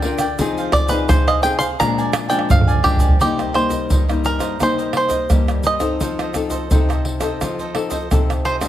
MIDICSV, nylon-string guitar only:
0, 0, Header, 1, 2, 480
1, 0, Start_track
1, 0, Tempo, 701754
1, 274, Time_signature, 4, 2, 24, 8
1, 5940, End_track
2, 0, Start_track
2, 0, Title_t, "Nylon-string guitar"
2, 0, Program_c, 0, 24
2, 0, Note_on_c, 0, 50, 68
2, 24, Note_on_c, 0, 62, 63
2, 28, Note_on_c, 0, 65, 60
2, 31, Note_on_c, 0, 70, 65
2, 170, Note_off_c, 0, 62, 0
2, 172, Note_off_c, 0, 65, 0
2, 173, Note_off_c, 0, 70, 0
2, 251, Note_off_c, 0, 50, 0
2, 274, Note_on_c, 0, 53, 74
2, 276, Note_on_c, 0, 60, 64
2, 279, Note_on_c, 0, 68, 64
2, 280, Note_on_c, 0, 63, 60
2, 596, Note_off_c, 0, 60, 0
2, 596, Note_off_c, 0, 63, 0
2, 598, Note_off_c, 0, 68, 0
2, 616, Note_on_c, 0, 60, 61
2, 618, Note_on_c, 0, 63, 65
2, 622, Note_on_c, 0, 68, 69
2, 730, Note_off_c, 0, 53, 0
2, 751, Note_on_c, 0, 48, 70
2, 946, Note_off_c, 0, 60, 0
2, 947, Note_off_c, 0, 63, 0
2, 947, Note_off_c, 0, 68, 0
2, 984, Note_on_c, 0, 60, 61
2, 987, Note_on_c, 0, 63, 57
2, 991, Note_on_c, 0, 68, 67
2, 1129, Note_off_c, 0, 60, 0
2, 1131, Note_off_c, 0, 63, 0
2, 1133, Note_off_c, 0, 68, 0
2, 1207, Note_off_c, 0, 48, 0
2, 1233, Note_on_c, 0, 46, 74
2, 1234, Note_on_c, 0, 53, 59
2, 1237, Note_on_c, 0, 56, 57
2, 1240, Note_on_c, 0, 62, 69
2, 1553, Note_off_c, 0, 53, 0
2, 1556, Note_off_c, 0, 56, 0
2, 1558, Note_off_c, 0, 62, 0
2, 1572, Note_on_c, 0, 53, 64
2, 1574, Note_on_c, 0, 56, 65
2, 1577, Note_on_c, 0, 62, 68
2, 1688, Note_off_c, 0, 46, 0
2, 1715, Note_on_c, 0, 41, 72
2, 1903, Note_off_c, 0, 53, 0
2, 1905, Note_off_c, 0, 56, 0
2, 1905, Note_off_c, 0, 62, 0
2, 1943, Note_on_c, 0, 53, 54
2, 1946, Note_on_c, 0, 56, 58
2, 1949, Note_on_c, 0, 62, 61
2, 2149, Note_off_c, 0, 53, 0
2, 2151, Note_off_c, 0, 56, 0
2, 2152, Note_off_c, 0, 62, 0
2, 2169, Note_off_c, 0, 41, 0
2, 2196, Note_on_c, 0, 48, 68
2, 2199, Note_on_c, 0, 55, 54
2, 2203, Note_on_c, 0, 58, 53
2, 2204, Note_on_c, 0, 63, 62
2, 2396, Note_off_c, 0, 55, 0
2, 2397, Note_off_c, 0, 58, 0
2, 2399, Note_off_c, 0, 63, 0
2, 2426, Note_on_c, 0, 55, 51
2, 2428, Note_on_c, 0, 58, 56
2, 2432, Note_on_c, 0, 63, 63
2, 2650, Note_off_c, 0, 48, 0
2, 2672, Note_on_c, 0, 43, 62
2, 2750, Note_off_c, 0, 55, 0
2, 2751, Note_off_c, 0, 58, 0
2, 2754, Note_off_c, 0, 63, 0
2, 2798, Note_on_c, 0, 55, 54
2, 2801, Note_on_c, 0, 58, 48
2, 2803, Note_on_c, 0, 63, 57
2, 3117, Note_off_c, 0, 55, 0
2, 3117, Note_off_c, 0, 58, 0
2, 3119, Note_off_c, 0, 63, 0
2, 3128, Note_off_c, 0, 43, 0
2, 3150, Note_on_c, 0, 48, 61
2, 3154, Note_on_c, 0, 55, 48
2, 3154, Note_on_c, 0, 58, 57
2, 3158, Note_on_c, 0, 63, 57
2, 3594, Note_off_c, 0, 55, 0
2, 3595, Note_off_c, 0, 58, 0
2, 3596, Note_off_c, 0, 63, 0
2, 3608, Note_off_c, 0, 48, 0
2, 3629, Note_on_c, 0, 43, 65
2, 3632, Note_on_c, 0, 55, 54
2, 3634, Note_on_c, 0, 58, 53
2, 3638, Note_on_c, 0, 63, 52
2, 3953, Note_off_c, 0, 55, 0
2, 3955, Note_off_c, 0, 58, 0
2, 3956, Note_off_c, 0, 63, 0
2, 3968, Note_on_c, 0, 60, 55
2, 3973, Note_on_c, 0, 63, 54
2, 3976, Note_on_c, 0, 69, 54
2, 4087, Note_off_c, 0, 43, 0
2, 4112, Note_on_c, 0, 53, 68
2, 4302, Note_off_c, 0, 60, 0
2, 4304, Note_off_c, 0, 63, 0
2, 4306, Note_off_c, 0, 69, 0
2, 4341, Note_on_c, 0, 60, 58
2, 4344, Note_on_c, 0, 63, 56
2, 4346, Note_on_c, 0, 69, 65
2, 4549, Note_off_c, 0, 60, 0
2, 4549, Note_off_c, 0, 63, 0
2, 4551, Note_off_c, 0, 69, 0
2, 4568, Note_off_c, 0, 53, 0
2, 4592, Note_on_c, 0, 60, 46
2, 4594, Note_on_c, 0, 48, 66
2, 4598, Note_on_c, 0, 63, 50
2, 4600, Note_on_c, 0, 69, 58
2, 4914, Note_off_c, 0, 60, 0
2, 4916, Note_off_c, 0, 63, 0
2, 4918, Note_off_c, 0, 69, 0
2, 4932, Note_on_c, 0, 60, 60
2, 4933, Note_on_c, 0, 63, 55
2, 4936, Note_on_c, 0, 69, 66
2, 5050, Note_off_c, 0, 48, 0
2, 5068, Note_on_c, 0, 53, 67
2, 5265, Note_off_c, 0, 60, 0
2, 5265, Note_off_c, 0, 63, 0
2, 5267, Note_off_c, 0, 69, 0
2, 5296, Note_on_c, 0, 60, 55
2, 5301, Note_on_c, 0, 63, 54
2, 5302, Note_on_c, 0, 69, 58
2, 5447, Note_off_c, 0, 60, 0
2, 5447, Note_off_c, 0, 63, 0
2, 5449, Note_off_c, 0, 69, 0
2, 5527, Note_off_c, 0, 53, 0
2, 5550, Note_on_c, 0, 48, 69
2, 5550, Note_on_c, 0, 60, 55
2, 5552, Note_on_c, 0, 63, 54
2, 5556, Note_on_c, 0, 69, 60
2, 5874, Note_off_c, 0, 60, 0
2, 5875, Note_off_c, 0, 63, 0
2, 5876, Note_off_c, 0, 69, 0
2, 5895, Note_on_c, 0, 55, 61
2, 5899, Note_on_c, 0, 60, 51
2, 5904, Note_on_c, 0, 62, 66
2, 5940, Note_off_c, 0, 48, 0
2, 5940, Note_off_c, 0, 55, 0
2, 5940, Note_off_c, 0, 60, 0
2, 5940, Note_off_c, 0, 62, 0
2, 5940, End_track
0, 0, End_of_file